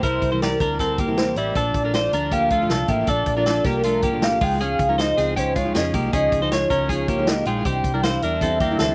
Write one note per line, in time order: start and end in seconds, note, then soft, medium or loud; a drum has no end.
0.03 0.19 C2 loud
0.03 0.31 G3 soft
0.03 0.30 C4 medium
0.03 0.31 E4 medium
0.03 0.30 E4 medium
0.03 0.30 A#4 medium
0.03 0.29 A#4 medium
0.03 0.39 C5 loud
0.03 kick medium
0.03 closed hi-hat medium
0.22 0.55 C2 medium
0.22 kick medium
0.22 closed hi-hat medium
0.31 0.61 C3 medium
0.31 0.61 E3 medium
0.31 0.57 G3 medium
0.31 0.58 C4 medium
0.31 0.59 E4 medium
0.31 0.42 E4 soft
0.31 0.60 A#4 medium
0.31 0.41 C5 medium
0.41 0.61 G4 medium
0.41 1.19 A#4 loud
0.41 0.61 D5 medium
0.41 snare medium
0.41 closed hi-hat medium
0.59 1.33 D2 medium
0.59 0.77 G3 medium
0.59 0.78 C4 medium
0.59 0.80 D4 medium
0.59 0.79 E4 medium
0.59 0.80 A#4 medium
0.59 0.79 A#4 medium
0.59 kick medium
0.59 closed hi-hat medium
0.78 1.07 G3 medium
0.78 1.06 C4 medium
0.78 0.99 C4 medium
0.78 1.06 E4 medium
0.78 0.99 A4 medium
0.78 1.06 A#4 medium
0.78 kick medium
0.78 closed hi-hat medium
0.98 1.35 A#3 medium
0.98 1.35 G4 medium
0.98 kick medium
0.98 closed hi-hat medium
1.07 1.37 C3 medium
1.07 1.37 E3 medium
1.07 1.34 G3 medium
1.07 1.35 C4 medium
1.07 1.36 E4 medium
1.07 1.36 A#4 medium
1.17 1.38 C5 medium
1.17 snare loud
1.17 closed hi-hat medium
1.35 1.52 A1 medium
1.35 1.55 G3 medium
1.35 1.56 G3 medium
1.35 1.55 C4 medium
1.35 1.56 E4 medium
1.35 1.56 A#4 medium
1.35 1.92 D5 loud
1.35 closed hi-hat medium
1.54 1.72 A#1 loud
1.54 1.83 F3 medium
1.54 1.83 A3 medium
1.54 1.83 D4 medium
1.54 1.84 D4 medium
1.54 1.82 F4 medium
1.54 1.83 A4 loud
1.54 kick loud
1.54 closed hi-hat medium
1.74 2.07 A#1 medium
1.74 kick medium
1.74 closed hi-hat medium
1.84 2.13 A#2 medium
1.84 2.12 F3 medium
1.84 2.12 A3 medium
1.84 2.13 D4 medium
1.84 1.95 D4 soft
1.84 2.13 F4 medium
1.84 1.94 A#4 medium
1.93 2.14 F4 medium
1.93 2.13 C5 medium
1.93 2.33 D5 loud
1.93 snare medium
1.93 closed hi-hat medium
2.12 2.67 D2 medium
2.12 2.30 F3 medium
2.12 2.31 A3 medium
2.12 2.32 D4 medium
2.12 2.33 D4 medium
2.12 2.33 F4 medium
2.12 2.32 A#4 medium
2.12 closed hi-hat medium
2.31 2.60 F3 medium
2.31 2.61 A3 medium
2.31 2.52 A#3 medium
2.31 2.61 D4 medium
2.31 2.60 F4 medium
2.31 2.51 G4 medium
2.31 2.91 F5 loud
2.31 kick medium
2.31 closed hi-hat medium
2.50 2.71 A3 medium
2.50 2.70 F4 medium
2.50 kick medium
2.50 closed hi-hat medium
2.62 2.91 A#2 soft
2.62 2.87 F3 medium
2.62 2.88 A3 medium
2.62 2.89 D4 medium
2.62 2.90 F4 medium
2.69 2.86 C2 medium
2.69 2.90 D4 medium
2.69 2.89 A4 medium
2.69 snare medium
2.69 closed hi-hat medium
2.88 3.05 A1 medium
2.88 3.07 F3 soft
2.88 3.08 A3 medium
2.88 3.08 A#3 medium
2.88 3.08 D4 medium
2.88 3.09 F4 medium
2.88 3.08 G4 medium
2.88 3.11 E5 loud
2.88 kick medium
2.88 closed hi-hat medium
3.07 3.24 A#1 medium
3.07 3.37 F3 soft
3.07 3.36 A3 medium
3.07 3.36 D4 medium
3.07 3.35 F4 medium
3.07 3.35 A4 loud
3.07 3.28 D5 loud
3.07 kick medium
3.07 closed hi-hat medium
3.26 3.59 A#1 medium
3.26 3.66 D5 loud
3.26 kick medium
3.26 closed hi-hat medium
3.37 3.66 A#2 medium
3.37 3.63 F3 medium
3.37 3.65 A3 medium
3.37 3.65 D4 medium
3.37 3.46 D4 soft
3.37 3.65 F4 medium
3.37 3.46 A#4 medium
3.46 3.66 D4 medium
3.46 3.65 A4 medium
3.46 snare medium
3.46 closed hi-hat medium
3.64 4.37 C2 medium
3.64 3.83 F3 medium
3.64 3.84 A3 medium
3.64 3.85 A#3 medium
3.64 3.85 D4 medium
3.64 3.85 F4 medium
3.64 3.84 G4 medium
3.64 4.25 A#4 loud
3.64 kick loud
3.64 snare soft
3.64 closed hi-hat medium
3.83 4.13 F3 medium
3.83 4.12 A3 medium
3.83 4.04 A3 medium
3.83 4.12 D4 medium
3.83 4.03 F4 medium
3.83 4.11 F4 medium
3.83 closed hi-hat medium
4.02 4.40 A#3 soft
4.02 4.39 G4 medium
4.02 kick medium
4.02 closed hi-hat medium
4.12 4.42 A#2 medium
4.12 4.40 F3 medium
4.12 4.42 A3 medium
4.12 4.42 D4 medium
4.12 4.41 F4 medium
4.22 4.45 F5 loud
4.22 snare loud
4.22 closed hi-hat medium
4.41 4.74 C#2 medium
4.41 4.59 F3 medium
4.41 4.61 G#3 medium
4.41 4.61 D#4 medium
4.41 4.60 F4 medium
4.41 4.62 F4 medium
4.41 4.61 G5 loud
4.41 kick loud
4.41 open hi-hat medium
4.60 4.88 F3 medium
4.60 4.88 G#3 medium
4.60 4.88 C#4 medium
4.60 4.88 D#4 medium
4.60 4.87 F4 medium
4.60 4.87 G#4 loud
4.60 5.01 F5 loud
4.60 closed hi-hat medium
4.79 5.12 C#2 loud
4.79 kick medium
4.79 closed hi-hat medium
4.88 5.18 C#3 medium
4.88 5.16 F3 medium
4.88 5.17 G#3 medium
4.88 4.98 C#4 soft
4.88 5.18 D#4 medium
4.88 5.17 F4 medium
4.88 4.98 A#4 medium
4.98 5.18 D#4 medium
4.98 5.17 C5 medium
4.98 5.40 D#5 loud
4.98 snare medium
4.98 closed hi-hat medium
5.17 5.72 C#2 medium
5.17 5.37 F3 medium
5.17 5.37 G#3 medium
5.17 5.37 C4 medium
5.17 5.37 D#4 medium
5.17 5.38 F4 medium
5.17 5.36 G#4 medium
5.17 snare soft
5.17 closed hi-hat medium
5.36 5.66 F3 medium
5.36 5.65 G#3 medium
5.36 5.56 C#4 medium
5.36 5.65 D#4 medium
5.36 5.64 F4 medium
5.36 5.55 G4 medium
5.36 5.60 C5 medium
5.36 kick medium
5.36 closed hi-hat medium
5.56 5.75 G#3 medium
5.56 5.74 F4 medium
5.56 5.78 C#5 medium
5.56 kick medium
5.56 closed hi-hat medium
5.65 5.95 C#3 medium
5.65 5.92 F3 medium
5.65 5.93 G#3 medium
5.65 5.94 D#4 medium
5.65 5.94 F4 medium
5.75 5.91 F2 medium
5.75 5.94 C#4 medium
5.75 5.94 G#4 medium
5.75 6.14 D#5 medium
5.75 snare loud
5.75 closed hi-hat medium
5.94 6.10 C2 medium
5.94 6.12 F3 medium
5.94 6.13 G#3 medium
5.94 6.13 A#3 medium
5.94 6.14 D#4 medium
5.94 6.14 F4 medium
5.94 6.13 G4 medium
5.94 kick medium
5.94 closed hi-hat medium
6.13 6.29 C#2 loud
6.13 6.42 F3 medium
6.13 6.41 G#3 soft
6.13 6.40 C#4 medium
6.13 6.41 D#4 medium
6.13 6.40 F4 medium
6.13 6.40 G#4 loud
6.13 6.55 D#5 loud
6.13 kick loud
6.13 closed hi-hat medium
6.32 6.65 C#2 medium
6.32 kick medium
6.32 closed hi-hat medium
6.41 6.71 C#3 medium
6.41 6.69 F3 medium
6.41 6.70 G#3 medium
6.41 6.70 D#4 medium
6.41 6.52 D#4 soft
6.41 6.70 F4 medium
6.41 6.51 C5 medium
6.52 6.71 F4 soft
6.52 6.70 C#5 medium
6.52 7.29 C#5 loud
6.52 snare medium
6.52 closed hi-hat medium
6.70 7.43 C#2 medium
6.70 6.88 F3 medium
6.70 6.89 G#3 medium
6.70 6.89 C#4 medium
6.70 6.90 D#4 medium
6.70 6.90 F4 medium
6.70 6.89 A#4 medium
6.70 kick medium
6.70 closed hi-hat medium
6.89 7.18 F3 medium
6.89 7.18 G#3 medium
6.89 7.09 C#4 medium
6.89 7.18 D#4 medium
6.89 7.17 F4 medium
6.89 7.08 G#4 medium
6.89 kick medium
6.89 closed hi-hat medium
7.08 7.45 A#3 medium
7.08 7.44 G4 medium
7.08 kick medium
7.08 closed hi-hat medium
7.18 7.47 C#3 medium
7.18 7.45 F3 medium
7.18 7.46 G#3 medium
7.18 7.47 D#4 medium
7.18 7.46 F4 medium
7.27 7.47 D#5 loud
7.27 snare loud
7.27 closed hi-hat medium
7.45 7.62 A#1 medium
7.45 7.64 F3 medium
7.45 7.66 G#3 medium
7.45 7.65 G#3 medium
7.45 7.66 D#4 medium
7.45 7.65 F4 medium
7.45 7.67 F4 medium
7.45 8.05 G5 loud
7.45 closed hi-hat medium
7.65 7.82 C2 medium
7.65 7.93 E3 medium
7.65 7.94 G3 medium
7.65 7.93 C4 medium
7.65 7.93 D4 medium
7.65 7.93 E4 medium
7.65 7.92 G4 loud
7.65 kick medium
7.65 closed hi-hat medium
7.84 8.17 C2 medium
7.84 kick medium
7.84 closed hi-hat medium
7.94 8.23 C3 medium
7.94 8.22 E3 medium
7.94 8.22 G3 medium
7.94 8.22 D4 medium
7.94 8.04 D4 medium
7.94 8.23 E4 medium
7.94 8.03 A#4 medium
8.03 8.23 E4 medium
8.03 8.22 C5 medium
8.03 8.24 F5 loud
8.03 snare loud
8.03 closed hi-hat medium
8.22 8.77 E2 loud
8.22 8.40 E3 medium
8.22 8.41 G3 medium
8.22 8.42 D4 medium
8.22 8.43 E4 medium
8.22 8.42 A#4 medium
8.22 8.95 E5 loud
8.22 closed hi-hat medium
8.41 8.70 E3 medium
8.41 8.70 G3 medium
8.41 8.61 C4 medium
8.41 8.71 D4 medium
8.41 8.70 E4 medium
8.41 8.60 A4 medium
8.41 kick medium
8.41 closed hi-hat medium
8.60 8.80 A#3 medium
8.60 8.79 G4 medium
8.60 kick loud
8.60 closed hi-hat medium
8.71 8.95 C3 medium
8.71 8.95 E3 medium
8.71 8.95 G3 medium
8.71 8.95 D4 medium
8.71 8.95 E4 medium
8.79 8.95 D2 medium
8.79 8.95 C4 medium
8.79 8.95 A4 medium
8.79 snare loud
8.79 closed hi-hat medium